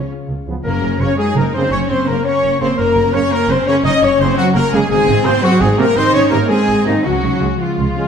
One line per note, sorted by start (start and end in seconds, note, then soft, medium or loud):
0.00 0.66 C#3 medium
0.00 0.67 G#3 medium
0.00 0.83 C#4 medium
0.00 0.34 F4 medium
0.00 0.47 G#4 medium
0.00 0.11 C#5 loud
0.00 0.11 C#5 medium
0.00 0.28 C#5 soft
0.00 0.10 F5 medium
0.00 0.11 C#6 loud
0.12 0.67 F5 medium
0.28 0.35 C#2 soft
0.28 1.36 C#5 medium
0.46 0.54 C#2 medium
0.46 0.54 F3 medium
0.46 0.55 B3 medium
0.46 0.67 G#4 medium
0.64 0.71 F#1 medium
0.64 2.77 F#2 medium
0.64 0.99 A#3 medium
0.64 1.15 C#4 medium
0.64 1.01 A#4 loud
0.64 0.98 A#4 medium
0.64 0.99 A#4 medium
0.64 1.03 A#5 medium
0.82 0.90 F#1 medium
0.99 1.07 F#1 medium
0.99 1.08 C#3 medium
0.99 1.08 A#3 medium
0.99 1.18 C#4 medium
0.99 1.54 A#4 medium
0.99 1.18 C#5 medium
0.99 1.19 C#5 medium
0.99 1.19 C#5 loud
0.99 1.19 C#5 medium
0.99 1.17 C#6 medium
1.18 1.36 G#3 medium
1.18 1.71 D#4 medium
1.18 1.36 G#4 loud
1.18 1.36 G#4 medium
1.18 1.37 G#4 loud
1.18 1.38 G#4 medium
1.18 2.25 F#5 medium
1.18 1.35 G#5 loud
1.35 1.43 F#1 medium
1.35 1.54 A#3 medium
1.35 1.44 A#4 medium
1.35 1.55 A#4 medium
1.35 1.53 A#4 medium
1.35 1.55 A#4 medium
1.35 1.56 A#4 medium
1.35 1.53 A#5 medium
1.54 1.63 C#3 medium
1.54 1.62 A#3 medium
1.54 1.72 C4 loud
1.54 2.07 A#4 medium
1.54 1.72 C5 loud
1.54 1.72 C5 medium
1.54 1.73 C5 medium
1.54 1.60 C6 medium
1.71 1.79 F#1 medium
1.71 3.84 C#3 medium
1.71 1.90 C#4 medium
1.71 2.25 C#4 medium
1.71 1.89 C#5 loud
1.71 1.79 C#5 loud
1.71 1.80 C#5 loud
1.71 1.80 C#5 medium
1.71 1.91 C#5 loud
1.71 1.77 C#6 loud
1.89 1.97 F#1 medium
1.89 2.08 C4 medium
1.89 2.07 C5 medium
1.89 2.08 C5 loud
1.89 2.10 C5 medium
1.89 1.98 C5 medium
1.89 2.09 C6 loud
2.06 2.14 F#1 medium
2.06 2.16 C#3 medium
2.06 2.25 A#3 medium
2.06 2.16 A#3 medium
2.06 2.24 A#4 medium
2.06 2.25 A#4 medium
2.06 2.26 A#4 medium
2.06 2.24 A#4 medium
2.06 2.26 A#4 medium
2.06 2.25 A#5 medium
2.23 2.78 A#3 medium
2.23 2.61 C#4 loud
2.23 2.59 C#5 loud
2.23 2.62 C#5 medium
2.23 2.60 C#5 medium
2.23 2.61 C#5 medium
2.23 3.31 F#5 medium
2.23 2.63 C#6 loud
2.43 2.50 F#1 medium
2.59 2.68 F#1 medium
2.59 2.67 C#3 medium
2.59 2.67 A#3 medium
2.59 2.78 C4 loud
2.59 3.14 A#4 medium
2.59 2.78 C5 loud
2.59 2.68 C5 medium
2.59 2.77 C5 medium
2.59 2.78 C5 loud
2.59 2.79 C5 medium
2.59 2.81 C6 medium
2.78 2.86 F#1 medium
2.78 4.92 F#2 medium
2.78 3.14 A#3 medium
2.78 4.90 C#4 loud
2.78 3.13 A#4 loud
2.78 3.13 A#4 medium
2.78 3.14 A#4 loud
2.78 3.14 A#5 loud
2.96 3.03 F#1 medium
3.14 3.21 F#1 medium
3.14 3.20 C#3 medium
3.14 3.20 A#3 medium
3.14 3.32 C#4 medium
3.14 3.67 A#4 medium
3.14 3.33 C#5 medium
3.14 3.31 C#5 loud
3.14 3.32 C#5 loud
3.14 3.32 C#5 medium
3.14 3.32 C#6 loud
3.31 3.49 A#3 loud
3.31 3.49 A#4 loud
3.31 3.51 A#4 loud
3.31 3.49 A#4 loud
3.31 3.50 A#4 loud
3.31 4.38 F#5 medium
3.31 3.50 A#5 loud
3.48 3.55 F#1 medium
3.48 3.67 C4 loud
3.48 3.67 C5 medium
3.48 3.57 C5 loud
3.48 3.67 C5 loud
3.48 3.68 C5 loud
3.48 3.57 C6 medium
3.66 3.74 C#3 medium
3.66 3.74 A#3 medium
3.66 3.84 C#4 loud
3.66 4.20 A#4 medium
3.66 3.84 C#5 loud
3.66 3.74 C#5 loud
3.66 3.75 C#5 loud
3.66 3.84 C#5 medium
3.66 3.76 C#5 loud
3.66 3.75 C#6 loud
3.85 3.92 F#1 medium
3.85 4.92 C#3 medium
3.85 3.92 D#4 loud
3.85 4.02 D#5 loud
3.85 4.06 D#6 loud
4.02 4.10 F#1 medium
4.02 4.09 C#4 loud
4.02 4.20 C#5 loud
4.02 4.20 C#5 medium
4.02 4.20 C#5 loud
4.02 4.10 C#5 loud
4.02 4.20 C#5 loud
4.02 4.21 C#6 loud
4.20 4.27 F#1 loud
4.20 4.26 C#3 medium
4.20 4.26 A#3 medium
4.20 4.37 C4 loud
4.20 4.72 A#4 medium
4.20 4.37 C5 loud
4.20 4.38 C5 loud
4.20 4.27 C6 loud
4.37 4.55 F#3 loud
4.37 4.45 F#4 loud
4.37 4.55 F#4 loud
4.37 4.58 F#4 loud
4.37 4.55 F#4 loud
4.37 4.56 F#4 loud
4.37 4.92 F#5 medium
4.37 4.45 F#5 loud
4.54 4.62 F#1 medium
4.54 4.63 A#3 loud
4.54 4.72 A#4 loud
4.54 4.73 A#4 loud
4.54 4.77 A#4 loud
4.54 4.92 C#5 medium
4.54 4.75 A#5 loud
4.70 4.80 F#1 medium
4.70 4.79 C#3 loud
4.70 4.89 G#3 loud
4.70 4.78 A#3 loud
4.70 4.88 G#4 loud
4.70 4.90 G#4 loud
4.70 4.90 G#5 loud
4.75 4.90 G#4 loud
4.89 4.97 G#1 loud
4.89 7.07 G#2 medium
4.89 5.25 G#3 loud
4.89 5.95 C4 loud
4.89 5.24 G#4 loud
4.89 5.25 G#4 loud
4.89 5.28 G#4 loud
4.89 5.25 G#4 loud
4.89 5.26 G#4 loud
4.89 5.26 G#5 loud
5.07 5.14 G#1 medium
5.23 5.32 G#1 medium
5.23 5.30 C3 loud
5.23 5.31 A#3 loud
5.23 5.43 C4 loud
5.23 5.43 C5 loud
5.23 5.45 C6 loud
5.43 5.61 F#3 loud
5.43 5.51 F#4 loud
5.43 5.61 F#4 loud
5.43 5.62 F#4 loud
5.43 6.48 D#5 medium
5.43 5.60 F#5 loud
5.60 5.68 G#1 loud
5.60 5.79 G#3 loud
5.60 5.78 G#4 loud
5.60 5.79 G#4 loud
5.60 5.80 G#4 loud
5.60 6.67 C5 medium
5.60 5.79 G#5 loud
5.76 5.84 C3 loud
5.76 5.83 A#3 loud
5.76 5.97 A#3 loud
5.76 5.96 A#4 loud
5.76 5.86 A#4 loud
5.76 5.96 A#4 loud
5.76 5.97 A#4 loud
5.76 5.96 A#5 loud
5.96 6.04 G#1 medium
5.96 7.06 D#3 medium
5.96 6.14 C4 loud
5.96 6.49 D#4 loud
5.96 6.14 C5 loud
5.96 6.05 C5 loud
5.96 6.14 C5 loud
5.96 6.15 C6 loud
6.13 6.22 G#1 medium
6.13 7.06 C4 medium
6.13 6.32 C#4 loud
6.13 6.32 C#5 loud
6.13 6.22 C#5 loud
6.13 6.32 C#5 loud
6.13 6.30 C#5 loud
6.13 6.31 C#6 loud
6.30 6.40 G#1 loud
6.30 6.37 C3 medium
6.30 6.37 A#3 medium
6.30 6.51 A#3 loud
6.30 6.51 A#4 loud
6.30 6.39 A#4 loud
6.30 6.85 A#4 medium
6.30 6.50 A#4 loud
6.30 6.38 A#5 loud
6.34 6.51 A#4 loud
6.48 6.87 G#3 loud
6.48 7.04 C4 loud
6.48 6.85 G#4 loud
6.48 6.86 G#4 loud
6.48 6.87 G#4 loud
6.48 6.86 G#4 loud
6.48 6.85 G#5 loud
6.68 6.76 G#1 medium
6.85 6.94 G#1 medium
6.85 6.92 C3 medium
6.85 7.05 D#3 loud
6.85 6.92 A#3 medium
6.85 7.04 D#4 medium
6.85 7.05 D#4 loud
6.85 7.04 D#4 medium
6.85 7.05 D#4 medium
6.85 7.06 D#5 medium
7.04 7.13 C#2 loud
7.04 8.08 C#3 medium
7.04 7.58 F#3 medium
7.04 7.56 C#4 medium
7.04 7.58 F#4 medium
7.04 7.40 F#4 loud
7.04 7.60 F#4 loud
7.04 7.40 F#5 loud
7.23 7.31 C#2 medium
7.23 8.08 C#4 medium
7.39 7.48 C#2 medium
7.39 7.47 C#3 medium
7.39 7.47 G#3 medium
7.39 7.95 G#4 medium
7.59 8.08 F3 medium
7.59 7.94 G#3 medium
7.59 8.08 F4 medium
7.59 8.08 F5 medium
7.59 8.08 C#6 medium
7.78 7.86 C#2 medium
7.78 8.08 C#5 medium
7.96 8.03 C#3 medium
7.96 8.03 G#3 medium
7.96 8.08 C#4 medium
7.96 8.08 G#4 medium